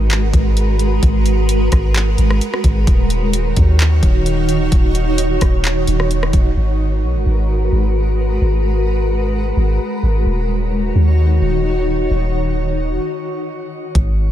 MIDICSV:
0, 0, Header, 1, 4, 480
1, 0, Start_track
1, 0, Key_signature, 5, "minor"
1, 0, Tempo, 461538
1, 1069, Time_signature, 4, 2, 24, 8
1, 14892, End_track
2, 0, Start_track
2, 0, Title_t, "Ambient pad"
2, 0, Program_c, 0, 92
2, 0, Note_on_c, 0, 56, 77
2, 0, Note_on_c, 0, 66, 73
2, 0, Note_on_c, 0, 70, 71
2, 0, Note_on_c, 0, 71, 84
2, 2947, Note_off_c, 0, 66, 0
2, 2951, Note_off_c, 0, 56, 0
2, 2951, Note_off_c, 0, 70, 0
2, 2951, Note_off_c, 0, 71, 0
2, 2988, Note_on_c, 0, 63, 69
2, 2989, Note_on_c, 0, 51, 78
2, 2989, Note_on_c, 0, 66, 72
2, 2989, Note_on_c, 0, 73, 87
2, 6790, Note_off_c, 0, 51, 0
2, 6790, Note_off_c, 0, 63, 0
2, 6790, Note_off_c, 0, 66, 0
2, 6790, Note_off_c, 0, 73, 0
2, 6828, Note_on_c, 0, 56, 71
2, 6828, Note_on_c, 0, 66, 69
2, 6828, Note_on_c, 0, 71, 81
2, 6829, Note_on_c, 0, 70, 70
2, 10630, Note_off_c, 0, 56, 0
2, 10630, Note_off_c, 0, 66, 0
2, 10630, Note_off_c, 0, 70, 0
2, 10630, Note_off_c, 0, 71, 0
2, 10668, Note_on_c, 0, 73, 83
2, 10669, Note_on_c, 0, 51, 76
2, 10669, Note_on_c, 0, 63, 68
2, 10669, Note_on_c, 0, 66, 67
2, 13520, Note_off_c, 0, 51, 0
2, 13520, Note_off_c, 0, 63, 0
2, 13520, Note_off_c, 0, 66, 0
2, 13520, Note_off_c, 0, 73, 0
2, 14510, Note_on_c, 0, 56, 76
2, 14510, Note_on_c, 0, 66, 68
2, 14510, Note_on_c, 0, 70, 71
2, 14510, Note_on_c, 0, 71, 86
2, 14892, Note_off_c, 0, 56, 0
2, 14892, Note_off_c, 0, 66, 0
2, 14892, Note_off_c, 0, 70, 0
2, 14892, Note_off_c, 0, 71, 0
2, 14892, End_track
3, 0, Start_track
3, 0, Title_t, "808-style bass"
3, 0, Program_c, 1, 38
3, 0, Note_on_c, 1, 32, 103
3, 331, Note_off_c, 1, 32, 0
3, 349, Note_on_c, 1, 32, 103
3, 1040, Note_off_c, 1, 32, 0
3, 1068, Note_on_c, 1, 32, 116
3, 1760, Note_off_c, 1, 32, 0
3, 1791, Note_on_c, 1, 32, 107
3, 2251, Note_off_c, 1, 32, 0
3, 2269, Note_on_c, 1, 32, 107
3, 2499, Note_off_c, 1, 32, 0
3, 2747, Note_on_c, 1, 32, 107
3, 2978, Note_off_c, 1, 32, 0
3, 2989, Note_on_c, 1, 27, 119
3, 3680, Note_off_c, 1, 27, 0
3, 3712, Note_on_c, 1, 39, 100
3, 4171, Note_off_c, 1, 39, 0
3, 4189, Note_on_c, 1, 27, 108
3, 4880, Note_off_c, 1, 27, 0
3, 4909, Note_on_c, 1, 27, 116
3, 5600, Note_off_c, 1, 27, 0
3, 5632, Note_on_c, 1, 27, 100
3, 6091, Note_off_c, 1, 27, 0
3, 6109, Note_on_c, 1, 27, 103
3, 6349, Note_on_c, 1, 28, 102
3, 6364, Note_off_c, 1, 27, 0
3, 6577, Note_off_c, 1, 28, 0
3, 6587, Note_on_c, 1, 27, 109
3, 6818, Note_off_c, 1, 27, 0
3, 6828, Note_on_c, 1, 32, 104
3, 7309, Note_on_c, 1, 35, 94
3, 7325, Note_off_c, 1, 32, 0
3, 7429, Note_on_c, 1, 32, 97
3, 7444, Note_off_c, 1, 35, 0
3, 7543, Note_off_c, 1, 32, 0
3, 7549, Note_on_c, 1, 32, 97
3, 8010, Note_off_c, 1, 32, 0
3, 8028, Note_on_c, 1, 32, 100
3, 8720, Note_off_c, 1, 32, 0
3, 8748, Note_on_c, 1, 32, 110
3, 9907, Note_off_c, 1, 32, 0
3, 9948, Note_on_c, 1, 32, 103
3, 10179, Note_off_c, 1, 32, 0
3, 10429, Note_on_c, 1, 32, 100
3, 10659, Note_off_c, 1, 32, 0
3, 10668, Note_on_c, 1, 27, 108
3, 11360, Note_off_c, 1, 27, 0
3, 11388, Note_on_c, 1, 39, 97
3, 11849, Note_off_c, 1, 39, 0
3, 11868, Note_on_c, 1, 27, 106
3, 12559, Note_off_c, 1, 27, 0
3, 12588, Note_on_c, 1, 27, 114
3, 13510, Note_off_c, 1, 27, 0
3, 14509, Note_on_c, 1, 32, 110
3, 14892, Note_off_c, 1, 32, 0
3, 14892, End_track
4, 0, Start_track
4, 0, Title_t, "Drums"
4, 106, Note_on_c, 9, 42, 71
4, 118, Note_on_c, 9, 39, 110
4, 210, Note_off_c, 9, 42, 0
4, 222, Note_off_c, 9, 39, 0
4, 349, Note_on_c, 9, 36, 111
4, 349, Note_on_c, 9, 42, 73
4, 453, Note_off_c, 9, 36, 0
4, 453, Note_off_c, 9, 42, 0
4, 591, Note_on_c, 9, 42, 73
4, 695, Note_off_c, 9, 42, 0
4, 826, Note_on_c, 9, 42, 69
4, 930, Note_off_c, 9, 42, 0
4, 1068, Note_on_c, 9, 42, 81
4, 1069, Note_on_c, 9, 36, 119
4, 1172, Note_off_c, 9, 42, 0
4, 1173, Note_off_c, 9, 36, 0
4, 1306, Note_on_c, 9, 42, 70
4, 1410, Note_off_c, 9, 42, 0
4, 1549, Note_on_c, 9, 42, 91
4, 1653, Note_off_c, 9, 42, 0
4, 1788, Note_on_c, 9, 42, 78
4, 1791, Note_on_c, 9, 36, 86
4, 1795, Note_on_c, 9, 37, 96
4, 1892, Note_off_c, 9, 42, 0
4, 1895, Note_off_c, 9, 36, 0
4, 1899, Note_off_c, 9, 37, 0
4, 2025, Note_on_c, 9, 42, 68
4, 2038, Note_on_c, 9, 39, 115
4, 2129, Note_off_c, 9, 42, 0
4, 2142, Note_off_c, 9, 39, 0
4, 2269, Note_on_c, 9, 42, 70
4, 2373, Note_off_c, 9, 42, 0
4, 2397, Note_on_c, 9, 37, 96
4, 2501, Note_off_c, 9, 37, 0
4, 2510, Note_on_c, 9, 42, 75
4, 2614, Note_off_c, 9, 42, 0
4, 2638, Note_on_c, 9, 37, 100
4, 2742, Note_off_c, 9, 37, 0
4, 2746, Note_on_c, 9, 42, 71
4, 2747, Note_on_c, 9, 36, 94
4, 2850, Note_off_c, 9, 42, 0
4, 2851, Note_off_c, 9, 36, 0
4, 2988, Note_on_c, 9, 36, 120
4, 2988, Note_on_c, 9, 42, 79
4, 3092, Note_off_c, 9, 36, 0
4, 3092, Note_off_c, 9, 42, 0
4, 3226, Note_on_c, 9, 42, 70
4, 3330, Note_off_c, 9, 42, 0
4, 3468, Note_on_c, 9, 42, 97
4, 3572, Note_off_c, 9, 42, 0
4, 3708, Note_on_c, 9, 42, 76
4, 3711, Note_on_c, 9, 36, 92
4, 3812, Note_off_c, 9, 42, 0
4, 3815, Note_off_c, 9, 36, 0
4, 3945, Note_on_c, 9, 42, 70
4, 3958, Note_on_c, 9, 39, 110
4, 4049, Note_off_c, 9, 42, 0
4, 4062, Note_off_c, 9, 39, 0
4, 4189, Note_on_c, 9, 36, 106
4, 4189, Note_on_c, 9, 42, 74
4, 4293, Note_off_c, 9, 36, 0
4, 4293, Note_off_c, 9, 42, 0
4, 4431, Note_on_c, 9, 42, 72
4, 4535, Note_off_c, 9, 42, 0
4, 4666, Note_on_c, 9, 42, 70
4, 4770, Note_off_c, 9, 42, 0
4, 4909, Note_on_c, 9, 36, 121
4, 4909, Note_on_c, 9, 42, 80
4, 5013, Note_off_c, 9, 36, 0
4, 5013, Note_off_c, 9, 42, 0
4, 5147, Note_on_c, 9, 42, 73
4, 5251, Note_off_c, 9, 42, 0
4, 5389, Note_on_c, 9, 42, 92
4, 5493, Note_off_c, 9, 42, 0
4, 5628, Note_on_c, 9, 42, 78
4, 5632, Note_on_c, 9, 36, 88
4, 5636, Note_on_c, 9, 37, 97
4, 5732, Note_off_c, 9, 42, 0
4, 5736, Note_off_c, 9, 36, 0
4, 5740, Note_off_c, 9, 37, 0
4, 5866, Note_on_c, 9, 42, 75
4, 5878, Note_on_c, 9, 39, 114
4, 5970, Note_off_c, 9, 42, 0
4, 5982, Note_off_c, 9, 39, 0
4, 6110, Note_on_c, 9, 42, 72
4, 6214, Note_off_c, 9, 42, 0
4, 6238, Note_on_c, 9, 37, 91
4, 6342, Note_off_c, 9, 37, 0
4, 6351, Note_on_c, 9, 42, 75
4, 6455, Note_off_c, 9, 42, 0
4, 6478, Note_on_c, 9, 37, 98
4, 6582, Note_off_c, 9, 37, 0
4, 6586, Note_on_c, 9, 42, 72
4, 6587, Note_on_c, 9, 36, 96
4, 6690, Note_off_c, 9, 42, 0
4, 6691, Note_off_c, 9, 36, 0
4, 14509, Note_on_c, 9, 36, 114
4, 14509, Note_on_c, 9, 42, 76
4, 14613, Note_off_c, 9, 36, 0
4, 14613, Note_off_c, 9, 42, 0
4, 14892, End_track
0, 0, End_of_file